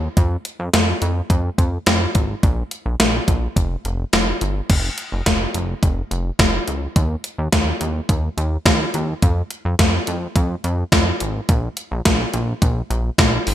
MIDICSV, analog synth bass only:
0, 0, Header, 1, 2, 480
1, 0, Start_track
1, 0, Key_signature, -4, "minor"
1, 0, Tempo, 566038
1, 143, Time_signature, 4, 2, 24, 8
1, 11484, End_track
2, 0, Start_track
2, 0, Title_t, "Analog synth bass"
2, 0, Program_c, 0, 38
2, 143, Note_on_c, 0, 41, 105
2, 311, Note_off_c, 0, 41, 0
2, 504, Note_on_c, 0, 41, 91
2, 588, Note_off_c, 0, 41, 0
2, 624, Note_on_c, 0, 41, 106
2, 792, Note_off_c, 0, 41, 0
2, 863, Note_on_c, 0, 41, 101
2, 1031, Note_off_c, 0, 41, 0
2, 1101, Note_on_c, 0, 41, 94
2, 1270, Note_off_c, 0, 41, 0
2, 1342, Note_on_c, 0, 41, 97
2, 1510, Note_off_c, 0, 41, 0
2, 1583, Note_on_c, 0, 41, 106
2, 1751, Note_off_c, 0, 41, 0
2, 1824, Note_on_c, 0, 32, 97
2, 1992, Note_off_c, 0, 32, 0
2, 2063, Note_on_c, 0, 34, 103
2, 2231, Note_off_c, 0, 34, 0
2, 2423, Note_on_c, 0, 34, 88
2, 2507, Note_off_c, 0, 34, 0
2, 2543, Note_on_c, 0, 34, 102
2, 2711, Note_off_c, 0, 34, 0
2, 2779, Note_on_c, 0, 34, 93
2, 2949, Note_off_c, 0, 34, 0
2, 3022, Note_on_c, 0, 29, 98
2, 3190, Note_off_c, 0, 29, 0
2, 3263, Note_on_c, 0, 29, 92
2, 3431, Note_off_c, 0, 29, 0
2, 3503, Note_on_c, 0, 29, 102
2, 3671, Note_off_c, 0, 29, 0
2, 3744, Note_on_c, 0, 31, 98
2, 3912, Note_off_c, 0, 31, 0
2, 3982, Note_on_c, 0, 29, 106
2, 4150, Note_off_c, 0, 29, 0
2, 4344, Note_on_c, 0, 29, 94
2, 4428, Note_off_c, 0, 29, 0
2, 4463, Note_on_c, 0, 29, 96
2, 4631, Note_off_c, 0, 29, 0
2, 4703, Note_on_c, 0, 29, 103
2, 4871, Note_off_c, 0, 29, 0
2, 4941, Note_on_c, 0, 29, 108
2, 5110, Note_off_c, 0, 29, 0
2, 5182, Note_on_c, 0, 29, 98
2, 5350, Note_off_c, 0, 29, 0
2, 5419, Note_on_c, 0, 29, 107
2, 5588, Note_off_c, 0, 29, 0
2, 5662, Note_on_c, 0, 37, 91
2, 5830, Note_off_c, 0, 37, 0
2, 5901, Note_on_c, 0, 39, 96
2, 6070, Note_off_c, 0, 39, 0
2, 6262, Note_on_c, 0, 39, 93
2, 6346, Note_off_c, 0, 39, 0
2, 6382, Note_on_c, 0, 39, 104
2, 6551, Note_off_c, 0, 39, 0
2, 6621, Note_on_c, 0, 39, 101
2, 6790, Note_off_c, 0, 39, 0
2, 6860, Note_on_c, 0, 39, 98
2, 7029, Note_off_c, 0, 39, 0
2, 7102, Note_on_c, 0, 39, 99
2, 7270, Note_off_c, 0, 39, 0
2, 7339, Note_on_c, 0, 39, 104
2, 7509, Note_off_c, 0, 39, 0
2, 7583, Note_on_c, 0, 39, 97
2, 7751, Note_off_c, 0, 39, 0
2, 7823, Note_on_c, 0, 41, 106
2, 7991, Note_off_c, 0, 41, 0
2, 8184, Note_on_c, 0, 41, 97
2, 8268, Note_off_c, 0, 41, 0
2, 8303, Note_on_c, 0, 41, 104
2, 8471, Note_off_c, 0, 41, 0
2, 8544, Note_on_c, 0, 41, 103
2, 8711, Note_off_c, 0, 41, 0
2, 8782, Note_on_c, 0, 41, 100
2, 8950, Note_off_c, 0, 41, 0
2, 9023, Note_on_c, 0, 41, 94
2, 9191, Note_off_c, 0, 41, 0
2, 9260, Note_on_c, 0, 41, 109
2, 9429, Note_off_c, 0, 41, 0
2, 9505, Note_on_c, 0, 32, 102
2, 9672, Note_off_c, 0, 32, 0
2, 9742, Note_on_c, 0, 34, 107
2, 9911, Note_off_c, 0, 34, 0
2, 10103, Note_on_c, 0, 34, 96
2, 10187, Note_off_c, 0, 34, 0
2, 10223, Note_on_c, 0, 34, 100
2, 10391, Note_off_c, 0, 34, 0
2, 10463, Note_on_c, 0, 34, 99
2, 10631, Note_off_c, 0, 34, 0
2, 10701, Note_on_c, 0, 34, 99
2, 10870, Note_off_c, 0, 34, 0
2, 10942, Note_on_c, 0, 34, 100
2, 11111, Note_off_c, 0, 34, 0
2, 11180, Note_on_c, 0, 34, 111
2, 11349, Note_off_c, 0, 34, 0
2, 11423, Note_on_c, 0, 31, 95
2, 11484, Note_off_c, 0, 31, 0
2, 11484, End_track
0, 0, End_of_file